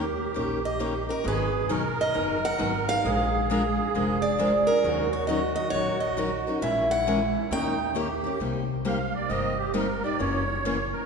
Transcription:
0.00 0.19 D#2 medium
0.00 1.07 G4 medium
0.00 0.69 A#4 medium
0.34 1.08 A#1 medium
0.34 0.58 D#3 medium
0.34 0.58 A#3 medium
0.34 0.58 C#4 medium
0.34 0.58 G4 medium
0.34 0.59 A#4 medium
0.65 1.11 D#5 medium
0.80 0.92 D#3 medium
0.80 0.92 A#3 medium
0.80 0.93 C#4 medium
0.80 0.93 G4 medium
0.80 0.93 A#4 medium
1.09 1.24 C#4 soft
1.09 1.25 G4 soft
1.09 1.25 A#4 medium
1.09 1.26 A#4 medium
1.24 1.61 G#1 medium
1.24 1.47 D#3 medium
1.24 1.47 F#3 medium
1.24 1.47 B3 medium
1.24 1.48 D#4 medium
1.24 1.48 G#4 medium
1.24 1.72 G#4 medium
1.24 1.68 B4 medium
1.69 2.08 E1 medium
1.69 1.82 D#3 medium
1.69 1.82 F#3 medium
1.69 1.82 B3 medium
1.69 1.82 D#4 medium
1.69 1.82 G#4 medium
1.69 3.08 A#4 loud
2.01 2.44 D#5 medium
2.14 2.53 F#1 medium
2.14 2.37 D#3 medium
2.14 2.37 F#3 medium
2.14 2.37 B3 medium
2.14 2.37 D#4 medium
2.14 2.37 G#4 medium
2.45 2.86 F#5 loud
2.58 2.98 G#1 medium
2.58 2.71 D#3 medium
2.58 2.71 F#3 medium
2.58 2.71 B3 medium
2.58 2.71 D#4 medium
2.58 2.71 G#4 medium
2.88 3.05 B3 medium
2.88 3.04 D#4 soft
2.88 3.03 G#4 medium
2.88 4.19 F5 loud
3.04 3.76 A#1 medium
3.04 3.27 F3 medium
3.04 3.27 G#3 medium
3.04 3.27 D4 medium
3.04 3.27 F4 medium
3.04 4.88 G#4 medium
3.04 3.27 A#4 medium
3.50 3.61 F3 medium
3.50 3.62 G#3 medium
3.50 3.62 D4 medium
3.50 3.62 F4 medium
3.50 3.62 A#4 medium
3.94 4.66 F1 medium
3.94 4.16 F3 medium
3.94 4.17 G#3 medium
3.94 4.17 D4 medium
3.94 4.17 F4 medium
3.94 4.17 A#4 medium
4.22 4.68 D5 medium
4.39 4.50 F3 medium
4.39 4.51 G#3 medium
4.39 4.51 D4 loud
4.39 4.51 F4 medium
4.39 4.51 A#4 medium
4.67 4.84 F4 medium
4.67 5.09 A#4 medium
4.67 4.83 A#4 medium
4.71 4.84 D4 soft
4.84 5.55 D#2 medium
4.84 5.06 D#3 medium
4.84 5.06 F#3 medium
4.84 5.06 C#4 medium
4.84 5.06 D#4 medium
4.84 6.58 F#4 medium
4.84 5.06 A#4 medium
5.13 5.27 C#5 medium
5.27 5.40 D#3 medium
5.27 5.40 F#3 medium
5.27 5.40 C#4 medium
5.27 5.40 D#4 medium
5.27 5.40 A#4 medium
5.27 5.54 D#5 medium
5.56 5.70 D#5 medium
5.70 6.44 A#1 medium
5.70 5.95 D#3 medium
5.70 5.98 C#5 loud
5.74 5.96 F#3 medium
5.74 5.96 C#4 medium
5.74 5.96 D#4 medium
5.74 5.96 A#4 medium
6.00 6.42 D#5 medium
6.17 6.29 D#3 medium
6.17 6.29 F#3 medium
6.17 6.29 C#4 medium
6.17 6.29 D#4 medium
6.17 6.30 A#4 loud
6.47 6.62 C#4 soft
6.47 6.62 D#4 medium
6.47 6.61 A#4 medium
6.61 7.33 A#1 medium
6.61 6.84 E3 medium
6.61 6.84 G#3 medium
6.61 6.85 C#4 medium
6.61 7.53 E4 medium
6.61 6.85 G#4 medium
6.61 6.85 A#4 medium
6.61 6.89 E5 medium
6.91 7.32 F#5 loud
7.07 7.18 E3 medium
7.07 7.19 G#3 medium
7.07 7.19 C#4 medium
7.07 7.19 G#4 medium
7.07 7.19 A#4 medium
7.51 8.22 D#2 medium
7.51 7.73 D#3 medium
7.51 7.74 A#3 medium
7.51 7.74 C#4 medium
7.51 7.93 D#4 medium
7.51 7.74 G4 medium
7.51 7.74 A#4 medium
7.51 7.93 G5 loud
7.95 8.07 D#3 medium
7.95 8.07 A#3 medium
7.95 8.08 C#4 medium
7.95 8.08 G4 medium
7.95 8.38 G4 medium
7.95 8.08 A#4 medium
8.24 8.41 C#4 soft
8.24 8.40 G4 soft
8.24 8.39 A#4 medium
8.40 9.12 C2 medium
8.40 8.62 C3 medium
8.40 8.63 G3 medium
8.40 8.63 A#3 medium
8.40 8.63 D#4 medium
8.40 8.63 G4 medium
8.85 8.97 C3 medium
8.85 8.97 G3 medium
8.85 8.97 A#3 medium
8.85 8.97 D#4 medium
8.85 8.97 G4 medium
8.85 9.14 F5 medium
9.15 9.30 D5 medium
9.29 10.01 G1 medium
9.29 9.52 C3 medium
9.29 9.52 G3 medium
9.29 9.52 A#3 medium
9.29 9.53 D#4 medium
9.29 9.53 G4 medium
9.29 9.58 D#5 medium
9.58 9.73 G4 medium
9.74 9.86 C3 medium
9.74 9.86 G3 medium
9.74 9.86 A#3 medium
9.74 9.86 D#4 medium
9.74 9.86 G4 medium
9.74 10.03 A#4 medium
10.04 10.19 A#3 soft
10.04 10.19 D#4 soft
10.04 10.19 G4 medium
10.04 10.19 D5 medium
10.19 10.91 F#1 medium
10.19 10.42 C#3 medium
10.19 10.42 E3 medium
10.19 10.42 A#3 medium
10.19 10.42 C#4 medium
10.19 10.42 F#4 medium
10.19 10.89 C#5 medium
10.65 10.76 C#3 medium
10.65 10.76 E3 medium
10.65 10.77 A#3 medium
10.65 10.77 C#4 medium
10.65 10.77 F#4 medium
10.92 11.06 A#4 medium

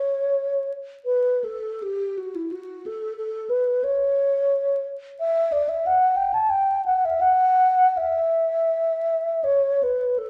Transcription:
0.00 0.72 C#5 medium
1.05 1.46 B4 medium
1.44 1.84 A4 soft
1.82 2.19 G4 soft
2.18 2.37 F#4 soft
2.35 2.54 E4 soft
2.52 2.88 F#4 soft
2.86 3.16 A4 medium
3.17 3.51 A4 medium
3.49 3.85 B4 soft
3.84 4.87 C#5 medium
5.20 5.54 E5 medium
5.52 5.70 D5 medium
5.69 5.88 E5 medium
5.86 6.18 F#5 medium
6.16 6.35 G5 medium
6.34 6.52 A5 medium
6.50 6.85 G5 medium
6.86 7.06 F#5 medium
7.05 7.22 E5 medium
7.21 7.99 F#5 medium
7.97 9.46 E5 medium
9.44 9.85 C#5 medium
9.83 10.20 B4 medium
10.18 10.30 A4 medium

